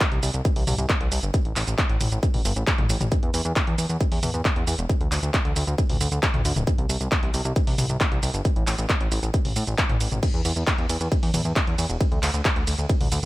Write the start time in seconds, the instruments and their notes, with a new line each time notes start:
0.01 kick, clap, closed hi-hat, shaker
0.12 analog synth bass C2, closed hi-hat
0.23 analog synth bass C2, open hi-hat, shaker
0.34 analog synth bass C2, closed hi-hat, shaker
0.45 kick, closed hi-hat, shaker
0.56 analog synth bass C2, open hi-hat
0.67 analog synth bass C2, open hi-hat, mid tom, shaker
0.78 analog synth bass C2, closed hi-hat, shaker
0.89 kick, clap, closed hi-hat, shaker
1.01 analog synth bass C2, closed hi-hat
1.12 analog synth bass C2, open hi-hat, shaker
1.23 analog synth bass G1, closed hi-hat, shaker
1.34 kick, closed hi-hat, shaker
1.45 analog synth bass A1, closed hi-hat
1.56 analog synth bass A1, clap, open hi-hat, shaker
1.67 analog synth bass A1, closed hi-hat, shaker
1.78 kick, clap, closed hi-hat, shaker
1.89 analog synth bass A1, closed hi-hat
2.01 analog synth bass A1, open hi-hat, mid tom, shaker
2.12 analog synth bass A1, shaker
2.23 kick, closed hi-hat, shaker
2.34 analog synth bass A1, open hi-hat, mid tom
2.45 analog synth bass G1, open hi-hat, shaker
2.56 analog synth bass A1, closed hi-hat, shaker
2.67 kick, clap, closed hi-hat, shaker
2.78 analog synth bass A1, closed hi-hat, mid tom
2.89 analog synth bass A1, open hi-hat, shaker
3.01 analog synth bass A1, closed hi-hat, mid tom, shaker
3.12 kick, closed hi-hat, shaker
3.23 analog synth bass E2, closed hi-hat
3.34 analog synth bass E2, open hi-hat, shaker
3.45 analog synth bass E2, closed hi-hat, shaker
3.56 kick, clap, closed hi-hat, shaker
3.67 analog synth bass E2, closed hi-hat
3.78 analog synth bass E2, open hi-hat, shaker
3.89 analog synth bass E2, closed hi-hat, shaker
4.01 kick, closed hi-hat, shaker
4.12 analog synth bass E2, open hi-hat
4.23 analog synth bass E2, open hi-hat, mid tom, shaker
4.34 analog synth bass E2, closed hi-hat, shaker
4.45 kick, clap, closed hi-hat, shaker
4.56 analog synth bass E2, closed hi-hat
4.67 analog synth bass E2, open hi-hat, shaker
4.78 analog synth bass E1, closed hi-hat, shaker
4.89 kick, closed hi-hat, shaker
5.01 analog synth bass D2, closed hi-hat
5.12 analog synth bass D2, clap, open hi-hat, shaker
5.23 analog synth bass D2, shaker
5.34 kick, clap, closed hi-hat, shaker
5.45 analog synth bass D2, closed hi-hat
5.56 analog synth bass D2, open hi-hat, shaker
5.67 analog synth bass D2, closed hi-hat, shaker
5.78 kick, closed hi-hat, shaker
5.89 analog synth bass D2, open hi-hat, mid tom
6.01 analog synth bass D2, open hi-hat, shaker
6.12 analog synth bass D2, closed hi-hat, shaker
6.23 kick, clap, closed hi-hat, shaker
6.34 analog synth bass D2, closed hi-hat, mid tom
6.45 analog synth bass D2, open hi-hat, shaker
6.56 analog synth bass D1, closed hi-hat, mid tom, shaker
6.67 kick, closed hi-hat, shaker
6.78 analog synth bass C2, closed hi-hat
6.89 analog synth bass C2, open hi-hat, shaker
7.01 analog synth bass C2, closed hi-hat, shaker
7.12 kick, clap, closed hi-hat, shaker
7.23 analog synth bass C2, closed hi-hat
7.34 analog synth bass C2, open hi-hat, shaker
7.45 analog synth bass C2, closed hi-hat, shaker
7.56 kick, closed hi-hat, shaker
7.67 analog synth bass C2, open hi-hat
7.78 analog synth bass C2, open hi-hat, mid tom, shaker
7.89 analog synth bass C2, closed hi-hat, shaker
8.01 kick, clap, closed hi-hat, shaker
8.12 analog synth bass C2, closed hi-hat
8.23 analog synth bass C2, open hi-hat, shaker
8.34 analog synth bass G1, closed hi-hat, shaker
8.45 kick, closed hi-hat, shaker
8.56 analog synth bass A1, closed hi-hat
8.67 analog synth bass A1, clap, open hi-hat, shaker
8.78 analog synth bass A1, closed hi-hat, shaker
8.89 kick, clap, closed hi-hat, shaker
9.01 analog synth bass A1, closed hi-hat
9.12 analog synth bass A1, open hi-hat, shaker
9.23 analog synth bass A1, closed hi-hat, shaker
9.34 kick, closed hi-hat, shaker
9.45 analog synth bass A1, open hi-hat, mid tom
9.56 analog synth bass A2, open hi-hat, shaker
9.67 analog synth bass A1, closed hi-hat, shaker
9.78 kick, clap, closed hi-hat, shaker
9.89 analog synth bass A1, closed hi-hat, mid tom
10.01 analog synth bass A1, open hi-hat, shaker
10.12 analog synth bass A1, closed hi-hat, mid tom, shaker
10.23 kick, closed hi-hat, crash, ride, shaker
10.34 analog synth bass E2, closed hi-hat
10.45 analog synth bass E2, open hi-hat, ride, shaker
10.56 analog synth bass E2, closed hi-hat, shaker
10.67 kick, clap, closed hi-hat, ride, shaker
10.78 analog synth bass E2, closed hi-hat
10.89 analog synth bass E2, open hi-hat, ride, shaker
11.01 analog synth bass E2, closed hi-hat, shaker
11.12 kick, closed hi-hat, ride, shaker
11.23 analog synth bass E2, open hi-hat
11.34 analog synth bass E2, open hi-hat, mid tom, ride, shaker
11.45 analog synth bass E2, closed hi-hat, shaker
11.56 kick, clap, closed hi-hat, ride, shaker
11.67 analog synth bass E2, closed hi-hat
11.78 analog synth bass E2, open hi-hat, ride, shaker
11.89 analog synth bass E1, closed hi-hat, shaker
12.01 kick, closed hi-hat, ride, shaker
12.12 analog synth bass D2, closed hi-hat
12.23 analog synth bass D2, clap, open hi-hat, ride, shaker
12.34 analog synth bass D2, closed hi-hat, shaker
12.45 kick, clap, closed hi-hat, ride, shaker
12.56 analog synth bass D2, closed hi-hat
12.67 analog synth bass D2, open hi-hat, ride, shaker
12.78 analog synth bass D2, closed hi-hat, shaker
12.89 kick, closed hi-hat, ride, shaker
13.01 analog synth bass D2, open hi-hat, mid tom
13.12 analog synth bass D2, open hi-hat, ride, shaker